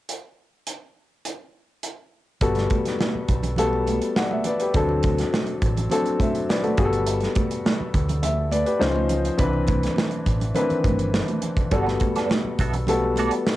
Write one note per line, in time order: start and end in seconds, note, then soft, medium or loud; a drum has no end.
0.09 closed hi-hat medium
0.67 closed hi-hat medium
1.25 closed hi-hat soft
1.83 closed hi-hat soft
2.41 2.66 G1 medium
2.41 3.34 G3 medium
2.41 3.35 B3 medium
2.41 3.35 F#4 medium
2.41 3.35 A4 medium
2.41 kick loud
2.41 closed hi-hat medium
2.41 muted conga soft
2.55 snare soft
2.55 closed hi-hat soft
2.55 muted conga soft
2.70 kick medium
2.70 closed hi-hat medium
2.70 high conga medium
2.86 snare soft
2.86 closed hi-hat soft
2.99 snare loud
2.99 muted conga soft
2.99 high conga medium
3.14 muted fingered electric bass stroke soft
3.14 muted conga soft
3.29 3.98 B1 medium
3.29 kick medium
3.29 closed hi-hat medium
3.43 closed hi-hat soft
3.43 low conga medium
3.56 4.51 G3 medium
3.56 4.51 B3 medium
3.56 4.16 F#4 medium
3.56 4.17 A4 medium
3.56 closed hi-hat medium
3.56 high conga soft
3.56 low conga medium
3.73 muted conga soft
3.87 closed hi-hat medium
3.87 high conga medium
4.01 closed hi-hat soft
4.16 4.31 D5 soft
4.16 4.30 F#5 medium
4.16 snare medium
4.16 muted conga soft
4.31 4.45 E5 medium
4.31 muted conga soft
4.31 high conga medium
4.44 4.59 B4 medium
4.44 4.60 D5 medium
4.44 closed hi-hat medium
4.44 low conga medium
4.60 4.88 G4 soft
4.60 4.88 B4 medium
4.60 closed hi-hat soft
4.74 5.22 D2 medium
4.74 5.68 F#3 medium
4.74 5.68 C4 medium
4.74 5.68 D4 medium
4.74 5.68 A4 medium
4.74 kick medium
4.74 closed hi-hat medium
4.74 muted conga soft
4.89 muted conga soft
5.03 kick medium
5.03 closed hi-hat medium
5.03 high conga medium
5.18 snare soft
5.18 closed hi-hat soft
5.33 snare medium
5.33 muted conga soft
5.33 high conga medium
5.47 closed hi-hat soft
5.47 muted conga soft
5.62 5.86 A1 medium
5.62 kick medium
5.62 closed hi-hat medium
5.77 closed hi-hat soft
5.77 low conga medium
5.90 6.78 F#3 medium
5.90 6.78 C4 medium
5.90 6.79 D4 medium
5.90 6.21 A4 medium
5.90 closed hi-hat medium
5.90 muted conga soft
5.90 high conga soft
5.90 low conga medium
6.05 closed hi-hat soft
6.20 6.48 C5 soft
6.20 6.48 E5 medium
6.20 kick medium
6.20 closed hi-hat medium
6.20 high conga medium
6.35 closed hi-hat soft
6.49 6.63 B4 medium
6.49 6.63 D5 medium
6.49 snare medium
6.49 muted conga soft
6.63 6.77 F#4 soft
6.63 6.83 A4 medium
6.63 closed hi-hat soft
6.63 muted conga soft
6.63 high conga medium
6.77 7.25 G1 medium
6.77 7.71 G3 medium
6.77 7.71 B3 medium
6.77 7.71 F#4 medium
6.77 6.85 G#4 medium
6.77 kick medium
6.77 closed hi-hat medium
6.77 low conga medium
6.85 7.75 A4 medium
6.93 closed hi-hat soft
7.06 closed hi-hat medium
7.06 muted conga soft
7.20 snare soft
7.20 closed hi-hat soft
7.35 kick medium
7.35 closed hi-hat medium
7.35 high conga medium
7.51 closed hi-hat soft
7.65 snare loud
7.65 high conga medium
7.80 muted fingered electric bass stroke soft
7.80 muted conga soft
7.94 8.64 D2 medium
7.94 kick medium
7.94 closed hi-hat medium
8.09 closed hi-hat soft
8.09 low conga medium
8.23 8.51 E5 medium
8.23 closed hi-hat medium
8.23 muted conga soft
8.23 high conga soft
8.23 low conga medium
8.51 8.65 B4 soft
8.51 8.66 D5 medium
8.51 closed hi-hat medium
8.51 high conga medium
8.66 8.94 G4 soft
8.66 8.94 B4 medium
8.66 closed hi-hat soft
8.79 9.28 C#2 medium
8.79 9.27 F3 medium
8.79 9.27 C#4 medium
8.79 9.27 D#4 medium
8.79 9.28 C5 medium
8.79 snare medium
8.96 muted conga soft
8.96 high conga medium
9.09 closed hi-hat medium
9.09 low conga medium
9.25 closed hi-hat soft
9.38 9.87 C2 medium
9.38 10.31 E3 medium
9.38 10.31 C4 medium
9.38 10.32 D4 medium
9.38 10.32 B4 medium
9.38 kick loud
9.38 closed hi-hat medium
9.38 muted conga soft
9.53 muted conga soft
9.67 kick medium
9.67 closed hi-hat medium
9.67 high conga medium
9.83 snare soft
9.83 closed hi-hat soft
9.96 snare loud
9.96 high conga medium
10.11 closed hi-hat soft
10.26 10.50 A1 medium
10.26 kick medium
10.26 closed hi-hat medium
10.40 closed hi-hat soft
10.40 low conga medium
10.54 10.62 D#3 medium
10.54 11.48 C4 medium
10.54 11.48 D4 medium
10.54 11.49 B4 medium
10.54 closed hi-hat medium
10.54 muted conga soft
10.54 high conga soft
10.54 low conga medium
10.61 11.51 E3 medium
10.70 muted fingered electric bass stroke soft
10.70 closed hi-hat soft
10.84 11.20 G1 medium
10.84 kick medium
10.84 closed hi-hat medium
10.84 high conga medium
10.99 closed hi-hat soft
11.14 snare medium
11.14 muted conga soft
11.28 closed hi-hat soft
11.28 muted conga soft
11.28 high conga medium
11.42 closed hi-hat medium
11.42 low conga medium
11.57 kick medium
11.57 closed hi-hat soft
11.71 11.96 G1 medium
11.71 12.64 G3 medium
11.71 11.93 B3 medium
11.71 12.65 B3 medium
11.71 11.86 F#4 medium
11.71 12.65 F#4 medium
11.71 11.86 A4 medium
11.71 12.65 A4 medium
11.71 11.85 D5 medium
11.71 kick medium
11.71 closed hi-hat medium
11.71 muted conga soft
11.86 muted clean electric guitar stroke soft
11.86 snare soft
11.86 muted conga soft
12.00 muted clean electric guitar stroke soft
12.00 kick medium
12.00 closed hi-hat medium
12.00 high conga medium
12.16 12.29 B3 soft
12.16 12.29 F#4 soft
12.16 12.30 A4 soft
12.16 12.30 D5 soft
12.16 snare soft
12.16 closed hi-hat soft
12.30 muted clean electric guitar stroke soft
12.30 snare loud
12.30 muted conga soft
12.30 high conga medium
12.44 muted fingered electric bass stroke soft
12.59 13.28 B1 medium
12.59 12.76 B3 medium
12.59 12.74 F#4 soft
12.59 12.73 A4 medium
12.59 12.74 E5 medium
12.59 kick medium
12.59 closed hi-hat medium
12.73 muted clean electric guitar stroke soft
12.73 closed hi-hat soft
12.73 low conga medium
12.87 13.56 G3 medium
12.87 13.56 B3 medium
12.87 13.56 F#4 medium
12.87 13.56 A4 medium
12.87 muted clean electric guitar stroke soft
12.87 closed hi-hat medium
12.87 muted conga soft
12.87 high conga soft
12.87 low conga medium
13.02 muted clean electric guitar stroke soft
13.02 muted conga soft
13.16 13.39 B3 medium
13.16 13.32 F#4 medium
13.16 13.32 A4 medium
13.16 13.32 D5 medium
13.16 closed hi-hat medium
13.16 high conga medium
13.31 muted clean electric guitar stroke soft
13.31 closed hi-hat soft
13.47 snare medium